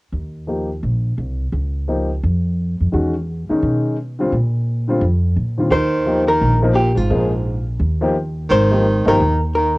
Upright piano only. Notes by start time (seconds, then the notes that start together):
0.48 F3 A#3 D#4 G4
1.88 F3 A#3 D#4 G4
2.92 D#3 G#3 C#4 F#4
3.49 D#3 G#3 C#4 D#4
4.19 D3 G3 C4 F4
4.88 D3 G3 C4 F4
5.58 D#2 D3 G3 C4 F4
6.06 F3 A#3 D#4 G4
6.62 F3 A#3 D#4 A#4
7.10 F3 A#3 D#4 G#4
8.01 F3 A#3 D#4 G4
8.71 F3 A#3 D#4 G4
9.06 F3 A#3 D#4 G4